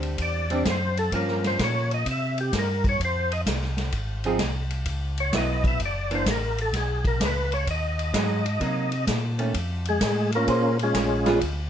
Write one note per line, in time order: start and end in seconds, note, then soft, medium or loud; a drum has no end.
0.00 0.17 D2 medium
0.00 0.44 G3 medium
0.00 0.44 C4 medium
0.00 0.44 D4 medium
0.00 ride soft
0.18 0.64 E2 medium
0.18 kick soft
0.18 ride medium
0.22 0.64 D5 medium
0.50 0.64 G3 medium
0.50 0.64 C4 medium
0.50 0.65 D4 medium
0.50 ride soft
0.65 1.11 F#2 medium
0.65 kick soft
0.65 snare medium
0.65 hi-hat pedal medium
0.65 ride medium
0.69 0.98 C5 medium
0.97 1.13 A4 medium
0.97 ride soft
1.12 1.58 G2 medium
1.12 2.06 F3 medium
1.12 2.06 A#3 medium
1.12 2.07 C#4 medium
1.12 1.45 A#4 medium
1.12 kick soft
1.12 ride medium
1.28 snare soft
1.44 1.60 C5 medium
1.44 snare soft
1.44 ride soft
1.59 2.05 A#2 loud
1.59 kick soft
1.59 snare medium
1.59 hi-hat pedal medium
1.59 ride medium
1.64 1.92 C#5 medium
1.91 2.07 D#5 medium
1.91 ride soft
2.06 2.52 C3 medium
2.06 kick soft
2.06 ride medium
2.11 2.39 E5 loud
2.38 2.54 G4 medium
2.38 ride soft
2.53 2.98 G2 loud
2.53 kick soft
2.53 snare medium
2.53 hi-hat pedal medium
2.53 ride medium
2.59 2.86 A#4 medium
2.84 kick medium
2.84 ride soft
2.89 3.02 C#5 loud
3.00 3.45 F2 medium
3.00 kick soft
3.00 ride medium
3.05 3.33 C5 medium
3.32 3.41 D#5 loud
3.32 ride medium
3.46 3.92 C2 loud
3.46 kick soft
3.46 snare medium
3.46 hi-hat pedal medium
3.46 ride medium
3.62 snare soft
3.77 snare soft
3.77 ride soft
3.92 4.38 G#1 medium
3.92 kick soft
3.92 ride medium
4.24 4.39 F3 medium
4.24 4.39 C4 medium
4.24 4.39 D#4 medium
4.24 4.39 G#4 medium
4.24 ride soft
4.39 4.85 C2 medium
4.39 kick soft
4.39 snare medium
4.39 hi-hat pedal medium
4.39 ride medium
4.70 ride soft
4.86 5.32 C#2 medium
4.86 kick soft
4.86 ride medium
5.18 5.34 C#5 medium
5.18 ride soft
5.32 5.79 B1 loud
5.32 5.80 F#3 medium
5.32 5.81 B3 medium
5.32 5.81 E4 medium
5.32 kick soft
5.32 snare medium
5.32 hi-hat pedal medium
5.32 ride medium
5.37 5.66 D#5 medium
5.64 5.81 E5 loud
5.64 kick medium
5.64 ride soft
5.79 6.25 F#1 medium
5.79 kick soft
5.79 ride medium
5.85 6.14 D5 medium
6.11 6.25 E3 medium
6.11 6.26 A#3 medium
6.11 6.26 D4 medium
6.11 ride soft
6.15 6.28 C5 medium
6.26 6.72 A1 loud
6.26 kick soft
6.26 snare medium
6.26 hi-hat pedal medium
6.26 ride medium
6.31 6.60 A#4 medium
6.58 6.75 A4 medium
6.58 ride soft
6.73 7.19 B1 medium
6.73 7.06 G#4 medium
6.73 kick soft
6.73 snare soft
6.73 ride medium
7.05 7.21 A#4 medium
7.05 kick medium
7.05 ride medium
7.20 7.66 C#2 medium
7.20 kick soft
7.20 snare medium
7.20 hi-hat pedal medium
7.20 ride medium
7.25 7.54 B4 medium
7.52 7.68 C#5 loud
7.52 ride medium
7.67 8.13 D#2 medium
7.67 9.05 D#5 medium
7.67 kick soft
7.67 ride medium
7.99 ride medium
8.13 8.59 G#2 medium
8.13 8.42 F#3 medium
8.13 8.42 G#3 medium
8.13 8.43 D#4 medium
8.13 kick soft
8.13 snare medium
8.13 hi-hat pedal medium
8.13 ride medium
8.46 ride medium
8.60 9.06 C3 medium
8.60 8.89 F#3 medium
8.60 8.89 A#3 medium
8.60 8.90 D#4 medium
8.60 kick soft
8.60 ride medium
8.92 ride medium
9.07 9.53 A#2 medium
9.07 kick soft
9.07 snare medium
9.07 hi-hat pedal medium
9.07 ride medium
9.38 9.53 D#3 medium
9.38 9.53 A3 medium
9.38 9.53 C#4 medium
9.38 ride soft
9.54 10.00 F2 medium
9.54 kick soft
9.54 ride medium
9.85 10.31 G#4 loud
9.85 ride soft
9.90 10.31 G#3 medium
10.01 10.46 A2 medium
10.01 kick soft
10.01 snare medium
10.01 hi-hat pedal medium
10.01 ride medium
10.32 10.78 A#3 medium
10.32 10.78 F4 medium
10.32 10.77 A#4 loud
10.32 ride soft
10.36 10.78 C#4 medium
10.47 10.93 A#2 medium
10.47 10.76 A#3 medium
10.47 10.76 C#4 medium
10.47 10.76 G#4 medium
10.47 10.77 C5 medium
10.47 kick soft
10.47 ride medium
10.79 11.39 F4 medium
10.79 11.39 G#4 loud
10.79 ride medium
10.83 11.40 G#3 medium
10.83 11.40 C#4 medium
10.94 11.40 A#1 medium
10.94 kick soft
10.94 snare medium
10.94 hi-hat pedal medium
10.94 ride medium
11.26 11.40 G3 medium
11.26 11.40 B3 medium
11.26 11.40 F4 medium
11.26 11.40 G#4 medium
11.26 snare medium
11.26 ride medium
11.41 11.70 D2 medium
11.41 kick soft
11.41 ride medium